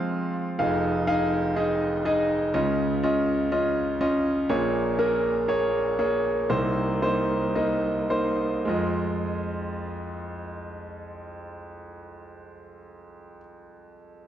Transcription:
0.00 0.54 F3 medium
0.00 0.55 G#3 medium
0.00 0.55 C4 medium
0.00 0.31 F4 medium
0.00 0.29 F5 loud
0.59 2.50 F1 medium
0.59 2.50 F2 medium
0.59 0.94 D#4 medium
0.59 0.94 G#4 medium
0.59 0.94 F5 medium
1.07 1.43 D#4 medium
1.07 1.43 G#4 medium
1.07 1.43 F5 medium
1.57 1.92 D#4 medium
1.57 1.92 G#4 medium
1.57 1.92 D#5 medium
2.05 2.41 D#4 medium
2.05 2.41 G#4 medium
2.05 2.41 D#5 medium
2.54 4.46 C#2 medium
2.54 4.45 C#3 medium
2.54 2.90 C#4 medium
2.54 2.90 F4 medium
2.54 2.90 D#5 medium
3.03 3.39 C#4 medium
3.03 3.39 F4 medium
3.03 3.39 D#5 medium
3.52 3.88 C#4 medium
3.52 3.88 F4 medium
3.52 3.88 D#5 medium
4.01 4.37 C#4 medium
4.01 4.37 F4 medium
4.01 4.37 D#5 medium
4.49 6.45 A#1 medium
4.49 6.45 A#2 medium
4.49 4.85 A#3 medium
4.49 4.85 G#4 medium
4.49 4.85 C#5 medium
4.99 5.35 A#3 medium
4.99 5.35 G#4 medium
4.99 5.35 A#4 medium
5.48 5.85 A#3 medium
5.48 5.85 G#4 medium
5.48 5.85 C#5 medium
5.99 6.36 A#3 medium
5.99 6.36 G#4 medium
5.99 6.36 C#5 medium
6.50 8.62 C2 medium
6.50 8.62 C3 medium
6.50 6.88 A#3 medium
6.50 6.87 D#4 medium
6.50 6.88 C5 medium
7.02 7.41 A#3 medium
7.02 7.41 D#4 medium
7.02 7.41 C5 medium
7.55 7.95 A#3 medium
7.55 7.95 D#4 medium
7.55 7.95 D#5 medium
8.10 8.51 A#3 medium
8.10 8.51 D#4 medium
8.10 8.51 C5 medium
8.65 13.37 F2 medium
8.65 13.35 G#3 medium
8.65 13.37 F4 medium
8.69 13.39 D#5 medium

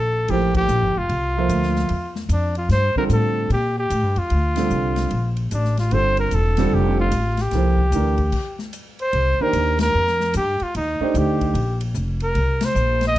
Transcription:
0.00 0.28 A#1 medium
0.00 0.32 A4 medium
0.28 0.68 A1 medium
0.28 0.90 F3 medium
0.28 0.90 A#3 medium
0.28 0.91 E4 soft
0.28 0.56 G4 medium
0.28 0.91 A4 medium
0.28 0.91 C5 medium
0.28 ride medium
0.54 1.00 G4 medium
0.54 kick medium
0.54 ride medium
0.68 0.82 A#1 medium
0.68 hi-hat pedal medium
0.82 0.96 G1 soft
0.97 1.09 F1 medium
0.97 2.17 F4 medium
1.09 1.49 C2 medium
1.09 ride medium
1.37 1.88 F3 medium
1.37 1.88 A#3 medium
1.37 1.89 A4 medium
1.37 1.89 C5 medium
1.37 1.88 E5 medium
1.49 1.88 D2 medium
1.49 hi-hat pedal medium
1.49 ride medium
1.63 snare soft
1.76 snare soft
1.89 2.28 E2 medium
1.89 ride medium
2.16 snare soft
2.29 2.68 F2 medium
2.29 2.56 D4 medium
2.29 hi-hat pedal medium
2.29 ride medium
2.55 2.70 F4 medium
2.55 ride soft
2.69 2.94 G2 medium
2.69 2.95 C5 medium
2.69 snare soft
2.69 ride medium
2.95 3.48 D3 medium
2.95 3.49 G3 medium
2.95 3.49 C4 medium
2.95 3.49 F4 medium
2.95 3.49 A4 medium
2.95 3.04 A#4 medium
2.95 muted upright bass stroke soft
2.95 kick soft
3.09 3.49 A2 medium
3.09 3.49 A4 medium
3.09 hi-hat pedal soft
3.09 ride medium
3.50 3.89 A#2 medium
3.50 3.76 G4 medium
3.50 ride medium
3.79 4.20 G4 medium
3.90 4.03 A2 medium
3.90 hi-hat pedal medium
3.90 ride medium
4.03 4.16 G2 soft
4.16 4.30 F2 medium
4.16 5.38 F4 medium
4.16 ride soft
4.30 4.70 D2 medium
4.30 ride medium
4.56 5.09 D3 medium
4.56 5.09 G3 soft
4.56 5.09 C4 medium
4.56 5.09 F4 soft
4.56 5.10 A4 medium
4.56 snare soft
4.56 ride medium
4.70 5.10 C2 medium
4.70 hi-hat pedal soft
4.96 snare soft
4.96 ride soft
5.10 5.50 A#1 medium
5.10 ride medium
5.37 ride soft
5.51 5.91 A1 medium
5.51 5.77 D4 medium
5.51 hi-hat pedal medium
5.51 ride medium
5.65 snare soft
5.77 5.95 F4 medium
5.77 snare soft
5.77 ride soft
5.91 6.31 G1 medium
5.91 6.53 D3 medium
5.91 6.53 G3 soft
5.91 6.54 C4 soft
5.91 6.54 F4 soft
5.91 6.54 A4 medium
5.91 6.18 C5 loud
5.91 ride medium
6.17 6.36 A#4 medium
6.17 ride soft
6.31 6.71 E1 medium
6.31 6.75 A4 medium
6.31 hi-hat pedal soft
6.31 ride medium
6.57 7.10 D3 medium
6.57 7.10 G3 medium
6.57 7.10 C4 medium
6.57 7.10 F4 medium
6.57 7.11 A4 medium
6.57 snare soft
6.57 ride medium
6.71 7.11 F1 medium
6.71 6.99 G4 medium
7.00 7.43 F4 medium
7.11 7.51 A1 medium
7.11 hi-hat pedal soft
7.11 ride medium
7.37 snare soft
7.37 ride soft
7.42 8.61 G4 medium
7.51 7.91 C2 medium
7.51 7.77 F3 medium
7.51 7.77 A#3 medium
7.51 snare soft
7.51 ride medium
7.55 7.77 E4 soft
7.55 7.78 A4 soft
7.55 7.78 C5 medium
7.78 kick medium
7.92 8.31 D2 medium
7.92 8.17 E3 medium
7.92 8.17 A3 soft
7.92 8.18 D4 soft
7.92 8.17 G4 soft
7.92 hi-hat pedal medium
7.92 ride medium
7.96 8.18 A#4 medium
8.18 kick soft
8.18 ride soft
8.32 kick medium
8.32 crash medium
8.32 ride medium
8.59 snare soft
8.73 hi-hat pedal medium
8.73 ride medium
8.99 9.43 C5 medium
8.99 ride soft
9.13 9.38 C2 medium
9.13 ride medium
9.39 9.92 D#3 medium
9.39 9.92 A#3 medium
9.39 9.92 D4 medium
9.39 9.93 G4 medium
9.39 9.81 A#4 loud
9.39 9.93 C5 medium
9.39 muted upright bass stroke soft
9.53 9.93 D#2 medium
9.53 hi-hat pedal soft
9.53 ride medium
9.79 10.32 A#4 medium
9.79 snare medium
9.79 ride medium
9.94 10.34 F2 medium
10.07 snare soft
10.21 snare soft
10.34 10.59 G2 medium
10.34 10.64 G4 medium
10.34 hi-hat pedal medium
10.34 ride medium
10.60 10.76 F4 medium
10.60 muted upright bass stroke soft
10.60 ride soft
10.75 10.99 D#2 medium
10.75 11.19 D#4 medium
10.75 ride medium
11.00 11.53 A3 medium
11.00 11.53 D4 medium
11.00 11.53 D#4 medium
11.00 11.54 G4 medium
11.00 11.54 C5 medium
11.00 muted upright bass stroke soft
11.14 11.53 D2 medium
11.14 11.83 G4 medium
11.14 hi-hat pedal medium
11.14 ride medium
11.41 kick soft
11.41 ride soft
11.54 11.94 A#1 medium
11.54 ride medium
11.81 ride medium
11.94 12.34 F1 medium
11.94 hi-hat pedal medium
12.20 12.67 A#4 medium
12.20 ride soft
12.35 12.74 C2 medium
12.35 ride medium
12.61 snare medium
12.61 ride medium
12.65 13.04 C5 medium
12.75 13.14 A#1 medium
12.75 hi-hat pedal medium
13.01 snare soft
13.01 ride soft
13.07 13.18 D#5 loud
13.15 13.19 D2 medium
13.15 ride medium

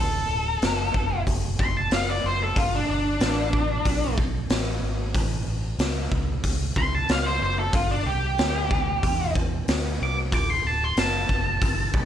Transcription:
0.00 0.27 D1 loud
0.00 1.22 A4 medium
0.29 0.59 D1 medium
0.62 0.91 F#1 loud
0.62 snare loud
0.62 open hi-hat medium
0.94 1.24 F#1 medium
0.94 kick medium
1.27 1.56 F#1 medium
1.27 kick medium
1.27 open hi-hat medium
1.59 1.89 F#1 medium
1.59 1.75 C6 loud
1.59 kick medium
1.77 1.92 A5 medium
1.91 2.21 F#1 medium
1.91 2.08 F5 medium
1.91 snare loud
1.91 open hi-hat medium
2.10 2.25 D5 loud
2.24 2.53 F#1 loud
2.24 2.41 C5 medium
2.43 2.57 A4 medium
2.56 2.86 G1 loud
2.56 2.73 F4 medium
2.56 kick loud
2.56 open hi-hat medium
2.75 2.90 D4 loud
2.89 3.18 G1 medium
2.89 4.15 D4 loud
3.20 3.81 A1 medium
3.20 snare loud
3.20 open hi-hat medium
3.53 kick medium
3.85 4.46 B1 medium
3.85 kick medium
3.85 open hi-hat medium
4.18 kick medium
4.50 4.79 A1 medium
4.50 snare loud
4.50 open hi-hat medium
4.81 5.11 G#1 medium
5.14 5.44 A1 loud
5.14 kick loud
5.14 open hi-hat medium
5.46 5.76 A1 medium
5.78 6.08 C#2 medium
5.78 snare loud
5.78 open hi-hat medium
6.12 6.41 C#2 medium
6.12 kick medium
6.43 6.73 C#2 medium
6.43 kick medium
6.43 open hi-hat medium
6.76 7.06 C#2 medium
6.76 6.93 C6 loud
6.76 kick medium
6.95 7.09 A5 loud
7.09 7.39 C#2 medium
7.09 7.26 F5 medium
7.09 snare loud
7.09 open hi-hat medium
7.26 7.41 C5 medium
7.42 7.71 F#1 medium
7.42 7.58 C5 medium
7.59 7.74 A4 medium
7.73 8.03 G1 loud
7.73 7.90 F4 loud
7.73 kick loud
7.73 open hi-hat medium
7.91 8.06 D4 loud
8.06 8.35 C2 medium
8.06 9.32 G4 loud
8.38 8.99 D2 loud
8.38 snare loud
8.38 open hi-hat soft
8.71 kick medium
9.03 9.64 E2 medium
9.03 kick medium
9.03 open hi-hat medium
9.35 kick medium
9.68 9.97 D2 medium
9.68 snare loud
9.68 open hi-hat medium
10.00 10.30 C2 medium
10.00 10.17 D6 loud
10.32 10.62 D1 medium
10.32 10.50 D6 medium
10.32 kick loud
10.32 open hi-hat soft
10.50 10.67 C6 loud
10.64 10.94 D1 medium
10.64 10.84 A5 medium
10.84 10.99 C6 medium
10.96 11.26 F#1 medium
10.96 12.05 A5 medium
10.96 snare loud
10.96 open hi-hat medium
11.29 11.59 F#1 medium
11.29 kick medium
11.62 11.91 G1 medium
11.62 kick medium
11.62 open hi-hat medium
11.94 12.05 B1 medium
11.94 kick medium

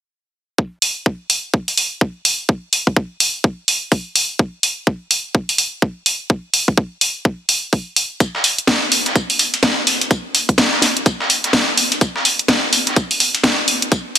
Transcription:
0.58 kick loud
0.82 open hi-hat loud
1.06 kick loud
1.30 open hi-hat medium
1.54 kick loud
1.68 open hi-hat medium
1.77 open hi-hat loud
2.01 kick loud
2.25 open hi-hat loud
2.49 kick loud
2.73 open hi-hat loud
2.87 kick medium
2.96 kick loud
3.20 open hi-hat loud
3.44 kick loud
3.68 open hi-hat loud
3.92 kick loud
3.92 open hi-hat medium
4.16 open hi-hat loud
4.39 kick loud
4.63 open hi-hat loud
4.87 kick loud
5.11 open hi-hat loud
5.35 kick loud
5.49 open hi-hat medium
5.58 open hi-hat loud
5.82 kick loud
6.06 open hi-hat loud
6.30 kick loud
6.54 open hi-hat loud
6.68 kick medium
6.77 kick loud
7.01 open hi-hat loud
7.25 kick loud
7.49 open hi-hat loud
7.73 kick loud
7.73 open hi-hat medium
7.96 open hi-hat loud
8.20 kick loud
8.20 closed hi-hat medium
8.20 tambourine medium
8.35 snare soft
8.44 open hi-hat loud
8.44 tambourine medium
8.58 closed hi-hat soft
8.67 kick loud
8.67 snare loud
8.67 closed hi-hat medium
8.67 tambourine medium
8.92 open hi-hat loud
8.92 tambourine medium
9.06 snare soft
9.06 closed hi-hat soft
9.16 kick loud
9.16 closed hi-hat medium
9.16 tambourine medium
9.30 open hi-hat medium
9.39 open hi-hat loud
9.39 tambourine medium
9.54 closed hi-hat soft
9.63 kick loud
9.63 snare loud
9.63 closed hi-hat medium
9.63 tambourine medium
9.87 open hi-hat medium
9.87 open hi-hat loud
10.01 closed hi-hat soft
10.11 kick loud
10.11 closed hi-hat medium
10.11 tambourine medium
10.35 open hi-hat loud
10.35 tambourine medium
10.49 kick medium
10.49 closed hi-hat soft
10.58 kick loud
10.58 snare loud
10.58 closed hi-hat medium
10.58 tambourine medium
10.73 snare medium
10.82 snare soft
10.82 open hi-hat loud
10.82 tambourine medium
10.97 closed hi-hat soft
11.06 kick loud
11.06 closed hi-hat medium
11.06 tambourine medium
11.20 snare medium
11.30 open hi-hat medium
11.30 tambourine medium
11.44 snare soft
11.44 closed hi-hat soft
11.53 kick loud
11.53 snare loud
11.53 open hi-hat medium
11.53 tambourine medium
11.77 open hi-hat loud
11.77 tambourine medium
11.92 closed hi-hat soft
12.01 kick loud
12.01 closed hi-hat medium
12.01 tambourine medium
12.16 snare soft
12.25 open hi-hat medium
12.25 tambourine medium
12.39 closed hi-hat medium
12.48 kick loud
12.48 snare loud
12.48 closed hi-hat medium
12.48 tambourine medium
12.73 open hi-hat medium
12.73 tambourine medium
12.87 snare soft
12.87 closed hi-hat soft
12.96 kick loud
12.96 closed hi-hat medium
12.96 tambourine medium
13.11 open hi-hat medium
13.20 open hi-hat medium
13.20 tambourine medium
13.35 closed hi-hat soft
13.44 kick loud
13.44 snare loud
13.44 closed hi-hat medium
13.44 tambourine medium
13.68 open hi-hat loud
13.82 closed hi-hat medium
13.92 kick loud
13.92 closed hi-hat medium
13.92 tambourine medium

